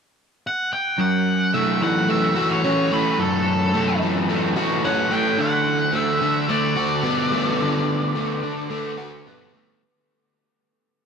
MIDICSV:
0, 0, Header, 1, 3, 480
1, 0, Start_track
1, 0, Key_signature, 2, "major"
1, 0, Tempo, 552486
1, 851, Time_signature, 4, 2, 24, 8
1, 9605, End_track
2, 0, Start_track
2, 0, Title_t, "Lead electric guitar"
2, 0, Program_c, 0, 29
2, 408, Note_on_c, 0, 78, 90
2, 631, Note_off_c, 0, 78, 0
2, 635, Note_on_c, 0, 79, 93
2, 870, Note_off_c, 0, 79, 0
2, 875, Note_on_c, 0, 78, 112
2, 1337, Note_off_c, 0, 78, 0
2, 1341, Note_on_c, 0, 76, 92
2, 1582, Note_off_c, 0, 76, 0
2, 1591, Note_on_c, 0, 78, 93
2, 1820, Note_off_c, 0, 78, 0
2, 1824, Note_on_c, 0, 76, 90
2, 2183, Note_on_c, 0, 73, 83
2, 2186, Note_off_c, 0, 76, 0
2, 2545, Note_off_c, 0, 73, 0
2, 2549, Note_on_c, 0, 71, 76
2, 2779, Note_on_c, 0, 69, 87
2, 2784, Note_off_c, 0, 71, 0
2, 3457, Note_off_c, 0, 69, 0
2, 4214, Note_on_c, 0, 78, 95
2, 4456, Note_off_c, 0, 78, 0
2, 4461, Note_on_c, 0, 79, 89
2, 4676, Note_off_c, 0, 79, 0
2, 4696, Note_on_c, 0, 78, 107
2, 5169, Note_off_c, 0, 78, 0
2, 5173, Note_on_c, 0, 76, 87
2, 5645, Note_on_c, 0, 74, 73
2, 5663, Note_off_c, 0, 76, 0
2, 8015, Note_off_c, 0, 74, 0
2, 9605, End_track
3, 0, Start_track
3, 0, Title_t, "Overdriven electric guitar"
3, 0, Program_c, 1, 29
3, 855, Note_on_c, 1, 42, 63
3, 1336, Note_on_c, 1, 57, 74
3, 1576, Note_on_c, 1, 52, 66
3, 1803, Note_off_c, 1, 57, 0
3, 1807, Note_on_c, 1, 57, 69
3, 2047, Note_on_c, 1, 66, 74
3, 2051, Note_off_c, 1, 42, 0
3, 2293, Note_on_c, 1, 61, 69
3, 2529, Note_off_c, 1, 57, 0
3, 2532, Note_on_c, 1, 57, 61
3, 2765, Note_on_c, 1, 42, 67
3, 2770, Note_off_c, 1, 52, 0
3, 3243, Note_off_c, 1, 57, 0
3, 3247, Note_on_c, 1, 57, 69
3, 3488, Note_off_c, 1, 61, 0
3, 3488, Note_on_c, 1, 52, 69
3, 3515, Note_off_c, 1, 66, 0
3, 3725, Note_off_c, 1, 57, 0
3, 3728, Note_on_c, 1, 57, 69
3, 3962, Note_on_c, 1, 66, 72
3, 3964, Note_off_c, 1, 42, 0
3, 4206, Note_on_c, 1, 61, 73
3, 4433, Note_off_c, 1, 57, 0
3, 4436, Note_on_c, 1, 57, 70
3, 4670, Note_off_c, 1, 52, 0
3, 4673, Note_on_c, 1, 50, 67
3, 4685, Note_off_c, 1, 61, 0
3, 5145, Note_off_c, 1, 57, 0
3, 5149, Note_on_c, 1, 57, 72
3, 5390, Note_off_c, 1, 50, 0
3, 5394, Note_on_c, 1, 50, 76
3, 5633, Note_off_c, 1, 57, 0
3, 5637, Note_on_c, 1, 57, 73
3, 5867, Note_off_c, 1, 66, 0
3, 5870, Note_on_c, 1, 66, 75
3, 6107, Note_on_c, 1, 59, 80
3, 6346, Note_off_c, 1, 57, 0
3, 6356, Note_on_c, 1, 57, 74
3, 6602, Note_off_c, 1, 50, 0
3, 6605, Note_on_c, 1, 50, 68
3, 7073, Note_off_c, 1, 57, 0
3, 7079, Note_off_c, 1, 66, 0
3, 7084, Note_on_c, 1, 57, 70
3, 7313, Note_off_c, 1, 50, 0
3, 7318, Note_off_c, 1, 59, 0
3, 7323, Note_on_c, 1, 50, 74
3, 7553, Note_off_c, 1, 57, 0
3, 7564, Note_on_c, 1, 57, 77
3, 7801, Note_on_c, 1, 66, 69
3, 8052, Note_on_c, 1, 59, 70
3, 8275, Note_off_c, 1, 57, 0
3, 8286, Note_on_c, 1, 57, 61
3, 8527, Note_off_c, 1, 66, 0
3, 8529, Note_off_c, 1, 57, 0
3, 8530, Note_off_c, 1, 50, 0
3, 8533, Note_off_c, 1, 59, 0
3, 9605, End_track
0, 0, End_of_file